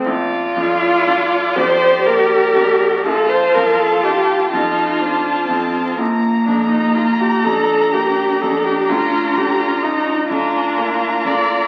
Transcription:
<<
  \new Staff \with { instrumentName = "Violin" } { \time 6/8 \key bes \major \tempo 4. = 41 d''2. | a''4. a''4. | bes''2. | bes''4. bes''4. | }
  \new Staff \with { instrumentName = "Viola" } { \time 6/8 \key bes \major r8 f'4 c''8 bes'4 | a'16 c''16 bes'16 a'16 g'8 f'4. | r8 d'16 ees'16 f'16 g'16 a'8 g'8 a'16 g'16 | f'8 g'16 f'16 ees'8 d'4 d''8 | }
  \new Staff \with { instrumentName = "Cello" } { \time 6/8 \key bes \major f'4. g'4. | f'4. ees'8 d'8 c'8 | bes4. d'4.~ | d'4. f'4. | }
  \new Staff \with { instrumentName = "Grand piano" } { \clef bass \time 6/8 \key bes \major bes,,8 f,8 d'8 f,8 bes8 f,8 | bes,,8 f,8 ees'8 f,8 c'8 f,8 | bes,,8 f,8 f'8 f,8 bes8 f,8 | d,8 d8 f'8 d8 bes8 d8 | }
>>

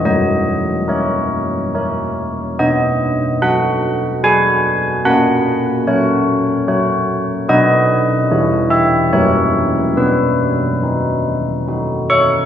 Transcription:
\new Staff \with { instrumentName = "Church bells" } { \time 3/4 \key b \major \tempo 4 = 72 << { dis''4 cis''4 r4 | dis''4 fis''4 gis''4 | fis''4 cis''4. r8 | dis''4. e''8 cis''4 |
b'2 r8 <cis'' cis'''>8 | } \\ { fis4 ais'4 <ais' cis''>4 | b4 fis'4 <fis' b'>4 | ais4 fis'4 <fis' cis''>4 | <b fis' b'>4 <e e' cis''>4 <fis e' ais'>4 |
b4 dis'4 <dis' fis'>4 | } >> }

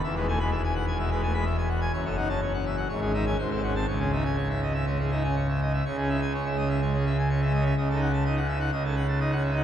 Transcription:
<<
  \new Staff \with { instrumentName = "Pipe organ" } { \time 4/4 \key cis \minor \tempo 4 = 125 << { e''16 b'16 gis''16 b''16 e''16 gis''16 fis''16 gis''16 e''16 b'16 gis''16 b''16 e''16 gis''16 fis''16 gis''16 | cis''16 a'16 fis''16 a''16 cis''16 fis''16 e''16 fis''16 cis''16 gis'16 e''16 gis''16 bis'16 a'16 fis''16 a''16 | cis''16 gis'16 e''16 gis''16 cis''16 e''16 dis''16 e''16 cis''16 gis'16 e''16 gis''16 cis''16 e''16 dis''16 e''16 | cis''16 gis'16 e''16 gis''16 cis''16 e''16 dis''16 e''16 cis''16 gis'16 e''16 gis''16 cis''16 e''16 dis''16 e''16 |
dis''16 a'16 fis''16 a''16 dis''16 fis''16 e''16 fis''16 dis''16 a'16 fis''16 a''16 dis''16 fis''16 e''16 fis''16 | } \\ { e,16 gis16 a16 gis16 r4 b,16 gis16 a16 gis16 r4 | fis,16 cis'16 dis'16 cis'16 r4 gis,16 cis'16 dis'16 cis'16 gis,16 bis16 cis'16 bis16 | cis16 cis'16 dis'16 cis'16 r4 gis16 cis'16 dis'16 cis'16 r4 | \tuplet 3/2 { cis8 cis'8 r8 cis'8 gis8 cis'8 gis8 cis'8 r8 cis'8 gis8 cis'8 } |
\tuplet 3/2 { cis8 dis'8 r8 dis'8 cis'8 dis'8 cis8 cis'8 r8 dis'8 cis'8 dis'8 } | } >> }
  \new Staff \with { instrumentName = "Pipe organ" } { \clef bass \time 4/4 \key cis \minor e,,1 | fis,,2 gis,,4 gis,,4 | cis,1 | cis,1 |
cis,2 cis,2 | }
>>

